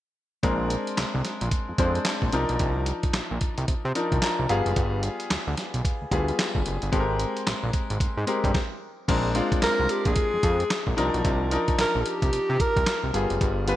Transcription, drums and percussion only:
0.43 kick loud
0.43 closed hi-hat medium
0.70 closed hi-hat medium
0.87 closed hi-hat soft
0.98 snare loud
0.98 clap medium
0.98 closed hi-hat medium
1.25 snare medium
1.25 closed hi-hat medium
1.41 closed hi-hat medium
1.51 kick medium
1.51 closed hi-hat medium
1.78 kick loud
1.78 closed hi-hat medium
1.95 closed hi-hat soft
2.05 snare loud
2.05 clap medium
2.05 closed hi-hat medium
2.22 kick medium
2.32 closed hi-hat medium
2.49 closed hi-hat soft
2.59 kick loud
2.59 closed hi-hat medium
2.86 closed hi-hat medium
3.03 kick medium
3.03 closed hi-hat medium
3.14 snare loud
3.14 clap medium
3.14 closed hi-hat medium
3.41 kick medium
3.41 closed hi-hat medium
3.58 closed hi-hat medium
3.68 kick loud
3.68 closed hi-hat medium
3.95 closed hi-hat medium
4.12 kick medium
4.12 closed hi-hat soft
4.22 snare loud
4.22 clap loud
4.22 closed hi-hat medium
4.49 closed hi-hat medium
4.66 closed hi-hat soft
4.76 kick loud
4.76 closed hi-hat medium
5.03 closed hi-hat medium
5.20 closed hi-hat medium
5.30 snare loud
5.30 clap medium
5.30 closed hi-hat medium
5.57 snare medium
5.57 closed hi-hat medium
5.74 closed hi-hat medium
5.85 kick loud
5.85 closed hi-hat medium
6.12 kick medium
6.12 closed hi-hat medium
6.28 closed hi-hat soft
6.39 snare loud
6.39 clap medium
6.39 closed hi-hat medium
6.55 kick medium
6.66 closed hi-hat medium
6.82 closed hi-hat soft
6.93 kick loud
6.93 closed hi-hat medium
7.20 closed hi-hat medium
7.37 closed hi-hat soft
7.47 snare loud
7.47 clap medium
7.47 closed hi-hat medium
7.73 kick medium
7.73 closed hi-hat medium
7.90 closed hi-hat medium
8.00 kick loud
8.00 closed hi-hat medium
8.27 closed hi-hat medium
8.44 kick medium
8.44 closed hi-hat soft
8.54 kick loud
8.54 snare medium
9.08 kick loud
9.08 closed hi-hat medium
9.08 crash medium
9.35 closed hi-hat medium
9.52 kick loud
9.52 closed hi-hat soft
9.62 snare loud
9.62 clap medium
9.62 closed hi-hat medium
9.89 closed hi-hat medium
10.05 kick medium
10.05 closed hi-hat medium
10.16 kick loud
10.16 closed hi-hat medium
10.43 kick loud
10.43 closed hi-hat medium
10.60 closed hi-hat soft
10.70 snare loud
10.70 clap medium
10.70 closed hi-hat medium
10.87 kick medium
10.98 closed hi-hat medium
11.14 closed hi-hat soft
11.25 kick loud
11.25 closed hi-hat medium
11.51 closed hi-hat medium
11.68 kick medium
11.68 closed hi-hat soft
11.79 snare loud
11.79 clap medium
11.79 closed hi-hat medium
12.06 closed hi-hat medium
12.22 kick medium
12.22 closed hi-hat medium
12.33 closed hi-hat medium
12.60 kick loud
12.60 closed hi-hat medium
12.76 kick medium
12.76 closed hi-hat soft
12.86 snare loud
12.86 clap medium
12.86 closed hi-hat medium
13.14 closed hi-hat medium
13.30 closed hi-hat soft
13.41 kick loud
13.41 closed hi-hat medium
13.68 closed hi-hat medium

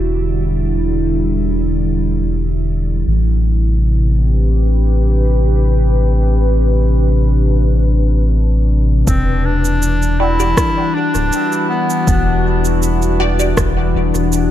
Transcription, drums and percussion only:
9.07 kick loud
9.07 cabasa medium
9.65 cabasa soft
9.82 cabasa medium
10.02 cabasa soft
10.40 cabasa soft
10.57 kick loud
10.57 cross-stick medium
10.57 cabasa medium
11.15 cabasa soft
11.32 cabasa medium
11.52 cabasa soft
11.90 cabasa soft
12.07 kick loud
12.07 cabasa medium
12.65 cabasa soft
12.82 cabasa medium
13.02 cabasa soft
13.39 cabasa soft
13.57 kick loud
13.57 cross-stick medium
13.57 cabasa medium
14.15 cabasa soft
14.32 cabasa medium

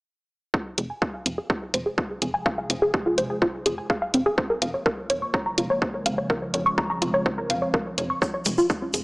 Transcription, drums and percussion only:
0.54 kick loud
0.78 closed hi-hat medium
1.02 kick loud
1.26 closed hi-hat medium
1.50 kick loud
1.74 closed hi-hat medium
1.98 kick loud
2.22 closed hi-hat medium
2.46 kick loud
2.70 closed hi-hat loud
2.94 kick loud
3.18 closed hi-hat medium
3.42 kick loud
3.66 closed hi-hat medium
3.90 kick loud
4.14 closed hi-hat loud
4.38 kick loud
4.62 closed hi-hat loud
4.86 kick loud
5.10 closed hi-hat loud
5.34 kick loud
5.58 closed hi-hat loud
5.82 kick loud
6.06 closed hi-hat loud
6.30 kick loud
6.54 closed hi-hat loud
6.78 kick loud
7.02 closed hi-hat loud
7.26 kick loud
7.50 closed hi-hat loud
7.74 kick loud
7.98 closed hi-hat loud
8.22 kick loud
8.22 shaker soft
8.45 closed hi-hat medium
8.45 shaker medium
8.58 shaker medium
8.70 kick loud
8.70 shaker soft
8.94 closed hi-hat medium
8.94 shaker medium

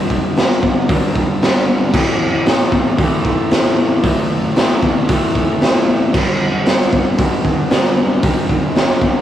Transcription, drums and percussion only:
0.10 kick medium
0.37 snare loud
0.37 open hi-hat medium
0.63 kick medium
0.89 kick loud
0.89 open hi-hat medium
1.16 kick medium
1.42 snare loud
1.42 open hi-hat medium
1.94 kick loud
1.94 crash loud
2.46 snare loud
2.46 open hi-hat medium
2.72 kick medium
2.98 kick loud
2.98 open hi-hat medium
3.25 kick medium
3.51 snare loud
3.51 open hi-hat medium
4.03 kick loud
4.03 open hi-hat medium
4.56 snare loud
4.56 open hi-hat medium
4.82 kick medium
5.09 kick loud
5.09 open hi-hat medium
5.35 kick medium
5.61 snare loud
5.61 open hi-hat medium
6.14 kick loud
6.14 crash loud
6.66 snare loud
6.66 open hi-hat medium
6.93 kick medium
7.18 kick loud
7.18 open hi-hat medium
7.45 kick medium
7.70 snare loud
7.70 open hi-hat medium
8.23 kick loud
8.23 open hi-hat medium
8.49 kick medium
8.75 snare loud
8.75 open hi-hat medium
9.02 kick medium

